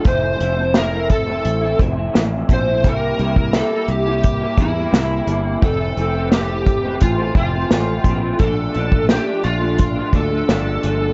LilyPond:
<<
  \new Staff \with { instrumentName = "Electric slide guitar" } { \time 4/4 \key f \major \tempo 4 = 86 c''4 bes'8 a'4 r4 c''8 | bes'4 a'8 g'4 e'4. | a'4 g'4 f'8 f'4. | a'4 g'8 f'4 a'4. | }
  \new Staff \with { instrumentName = "Clean electric guitar" } { \time 4/4 \key f \major <f a c' e'>8 <f a c' e'>16 <a c' e'>16 <f a c' e'>16 <a c' e'>8 <a c' e'>8 <a c' e'>16 <f a c' e'>16 <a c' e'>16 <f a c' e'>8 <f a c' e'>16 <a c' e'>16 | <c g bes e'>8 <c g bes e'>16 <g bes e'>16 <c g bes e'>16 <g bes e'>8 <g bes e'>8 <g bes e'>16 <c g bes e'>16 <g bes e'>16 <c g bes e'>8 <c g bes e'>8 | <f, c e a c'>8 <c e a c'>16 <e a c'>16 <f, c e a c'>16 <e a c'>8 <e a c'>8 <e a c'>16 <c e a c'>16 <e a c'>16 <f, c a c'>8 <c e a c'>16 <e a c'>16 | <bes, f a d'>8 <bes, f a d'>16 <f a d'>16 <bes, f a d'>16 <f a d'>8 <f a d'>8 <f a d'>16 <bes, f a d'>16 <f a d'>16 <bes, f a d'>8 <bes, f a d'>8 | }
  \new Staff \with { instrumentName = "Fingered electric bass" } { \clef bass \time 4/4 \key f \major f,,8 f,,4. a,,8 f,,8 a,,8 bes,,8 | c,8 c,8. r16 c,4 e,8 c,8 g,,8 | f,,8 f,,4. a,,8 f,,8 a,,8 bes,,8 | bes,,8 bes,,8. r16 bes,,4 d,8 g,,8 g,,8 | }
  \new DrumStaff \with { instrumentName = "Drums" } \drummode { \time 4/4 <hh bd>8 hh8 <hh sn>8 <hh bd>8 hh8 <hh bd>8 <hh sn>8 <hh bd>8 | <hh bd>8 hh16 bd16 <hh sn>8 hh8 <hh bd>8 <hh bd>8 <hh sn>8 hh8 | <hh bd>8 hh8 <hh sn>8 <hh bd>8 <hh bd>8 <hh bd>8 <hh sn>8 <hh bd>8 | <hh bd>8 hh16 bd16 <hh sn>8 hh8 <hh bd>8 <hh bd>8 <hh sn>8 hh8 | }
>>